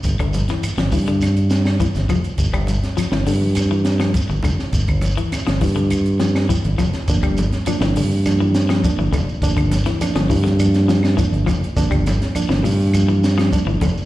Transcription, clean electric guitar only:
\new Staff \with { instrumentName = "Clean electric guitar" } { \clef bass \time 4/4 \key g \dorian \tempo 4 = 102 r16 d8 e8 f16 e16 d8 r8. e8 f8 | r16 g8 r16 f16 e16 d8 r16 e8 f8 r16 d8 | r8. e8 f16 e16 d8 r16 f8 e8 f8 | r16 g8 r16 f16 e16 d8 r16 e8 f8 e16 d8 |
r16 d8 e8 f16 e16 d8 r16 f8 e8 f8 | r16 g8 r8 e16 bes,8 r16 e8 f8 e16 d8 | }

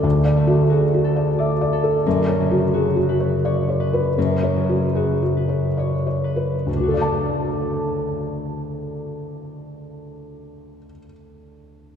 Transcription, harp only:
\new Staff \with { instrumentName = "Harp" } { \time 3/4 \key d \major \tempo 4 = 73 <d a fis' a' d''>8 a8 fis'8 a'8 d''8 a'8 | fis,8 cis8 fis'8 b'8 cis''8 b'8 | fis,8 cis8 fis'8 b'8 cis''8 b'8 | <d d' fis' a' d'' a''>2.~ |
<d d' fis' a' d'' a''>2. | }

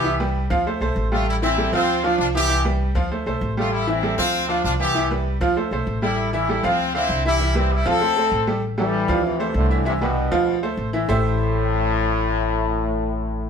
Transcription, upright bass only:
\new Staff \with { instrumentName = "Upright bass" } { \clef bass \time 4/4 \key a \minor \tempo 4 = 196 c,4. d,4 b,,8 a,,4~ | a,,4. d,4. c,4~ | c,4. d,4 b,,8 a,,4~ | a,,4. d,4. c,4~ |
c,4. d,4 b,,8 a,,4~ | a,,4. d,4. c,4~ | c,4. d,4. a,,4~ | a,,4. d,4. c,4~ |
c,4. d,4. a,,4 | a,,1~ | a,,1 | }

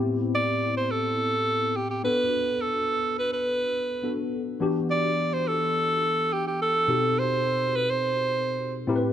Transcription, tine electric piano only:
\new Staff \with { instrumentName = "Tine electric piano" } { \time 4/4 \key b \phrygian \tempo 4 = 105 <a, b c' e' g'>2.~ <a, b c' e' g'>8 <b d' fis' a'>8~ | <b d' fis' a'>2. <b d' fis' a'>4 | <e b d' fis' g'>1 | <b, c' dis' fis' g' a'>2.~ <b, c' dis' fis' g' a'>8 <a, c' e' g' ais' b'>8 | }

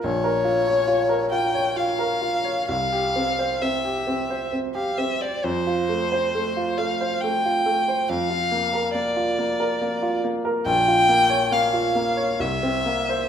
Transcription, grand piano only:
\new Staff \with { instrumentName = "Grand piano" } { \time 3/4 \key bes \lydian \tempo 4 = 68 bes,,16 bes'16 f'16 des''16 f'16 bes'16 f'16 des''16 f'16 bes'16 f'16 des''16 | c,16 g'16 c'16 c''16 c'16 g'16 c'16 c''16 c'16 g'16 c'16 c''16 | f,16 f'16 a16 c''16 a16 f'16 a16 c''16 a16 f'16 a16 c''16 | f,16 f'16 bes16 bes'16 bes16 f'16 bes16 bes'16 bes16 f'16 bes16 bes'16 |
bes,,16 f'16 bes16 des''16 bes16 f'16 bes16 des''16 c,16 c'16 bes16 c''16 | }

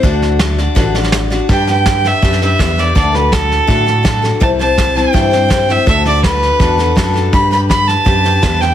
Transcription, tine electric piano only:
\new Staff \with { instrumentName = "Tine electric piano" } { \clef bass \time 4/4 \key g \major \tempo 4 = 164 d,2 a,,2 | g,2 fis,4 e,4 | d,2 a,2 | c,2 g,2 |
d,2 e,4 fis,4 | g,2 fis,4 e,4 | }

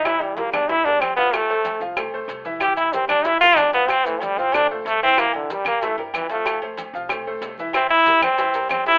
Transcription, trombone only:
\new Staff \with { instrumentName = "Trombone" } { \time 4/4 \key f \major \tempo 4 = 187 e'8 g8 bes8 d'8 e'8 d'8 c'8 b8 | a4. r2 r8 | g'8 e'8 c'8 d'8 e'8 f'8 d'8 b8 | c'8 e8 g8 c'8 d'8 f8 a8 c'8 |
bes8 d8 g8 bes8 a8 c8 e8 a8~ | a8 r2. r8 | c'8 e'4 c'4. c'8 e'8 | }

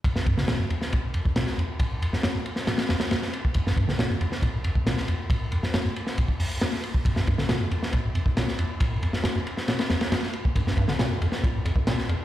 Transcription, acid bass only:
\new Staff \with { instrumentName = "Acid bass" } { \clef bass \time 4/4 \key g \minor \tempo 4 = 137 g,16 g,16 g,16 d16 bes,16 g,16 f,16 r16 bes,16 g,16 f,16 g,16 bes,16 r16 f,16 r16 | bes,16 g,16 f,16 g,16 g,16 g,16 r8 bes,16 r16 f,16 r16 g,16 r8. | g,16 g,16 g,16 d16 bes,16 g,16 f,16 r16 bes,16 g,16 f,16 g,16 bes,16 r16 f,16 r16 | bes,16 g,16 f,16 g,16 g,16 g,16 r8 bes,16 r16 f,16 r16 g,16 r8. |
g,16 g,16 g,16 d16 bes,16 g,16 f,16 r16 bes,16 g,16 f,16 g,16 bes,16 r16 f,16 r16 | bes,16 g,16 f,16 g,16 g,16 g,16 r8 bes,16 r16 f,16 r16 g,16 r8. | g,16 g,16 g,16 d16 bes,16 g,16 f,16 r16 bes,16 g,16 f,16 g,16 bes,16 r16 f,16 r16 | }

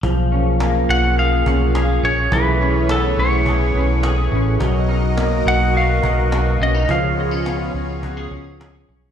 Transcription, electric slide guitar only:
\new Staff \with { instrumentName = "Electric slide guitar" } { \time 4/4 \key ais \phrygian \tempo 4 = 105 r4. fis''8 eis''4. cis''8 | b'4 a'8 cis''2 r8 | r4. fis''8 eis''4. dis''8 | eis''2. r4 | }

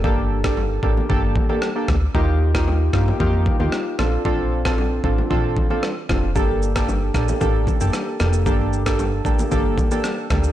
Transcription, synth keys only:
\new Staff \with { instrumentName = "Synth keys" } { \time 4/4 \key g \minor \tempo 4 = 114 <bes d' g' a'>8. <bes d' g' a'>8. <bes d' g' a'>8 <bes d' g' a'>8. <bes d' g' a'>16 r16 <bes d' g' a'>16 r8 | <bes ees' f' g'>8. <bes ees' f' g'>8. <bes ees' f' g'>8 <bes ees' f' g'>8. <bes ees' f' g'>8. <c' d' f' a'>8 | <c' d' f' a'>8. <c' d' f' a'>8. <c' d' f' a'>8 <c' d' f' a'>8. <c' d' f' a'>16 r8 <c' d' f' a'>8 | <bes d' g' a'>8. <bes d' g' a'>8. <bes d' g' a'>8 <bes d' g' a'>8. <bes d' g' a'>8. <bes d' g' a'>8 |
<bes d' g' a'>8. <bes d' g' a'>8. <bes d' g' a'>8 <bes d' g' a'>8. <bes d' g' a'>8. <bes d' g' a'>8 | }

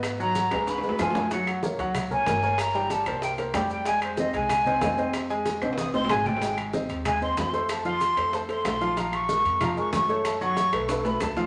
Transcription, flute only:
\new Staff \with { instrumentName = "Flute" } { \time 4/4 \key f \minor \tempo 4 = 188 r8 bes''4. ces'''4 aes''4 | ges''8 r2 aes''4. | bes''4 a''4 g''8 r4 g''8 | aes''8 c''8 ees''8 aes''2~ aes''8 |
r2 ees'''8 c'''8 aes''8 g''8~ | \key bes \dorian g''8 r4. aes''8 c'''8 c'''4 | a''8 c'''4. a''8 c'''8 c'''4 | bes''8 des'''4. bes''8 des'''8 des'''4 |
a''8 des'''4. r8 b''8 a''4 | }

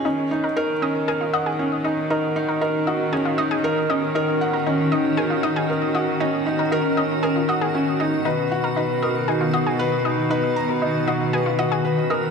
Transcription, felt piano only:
\new Staff \with { instrumentName = "Felt piano" } { \time 4/4 \key ees \minor \tempo 4 = 117 des'8 ees'8 bes'8 des'8 bes'8 ges''8 des'8 ees'8 | bes'8 ees'8 bes'8 ges'8 des'8 ees'8 bes'8 des'8 | bes'8 ges''8 des'8 ees'8 bes'8 ees'8 bes'8 ges'8 | des'8 ees'8 bes'8 des'8 bes'8 ges''8 des'8 ees'8 |
b'8 fis'8 b'8 ais'8 dis'8 fis'8 b'8 dis'8 | b'8 ais''8 dis'8 fis'8 b'8 fis'8 b'8 ais'8 | }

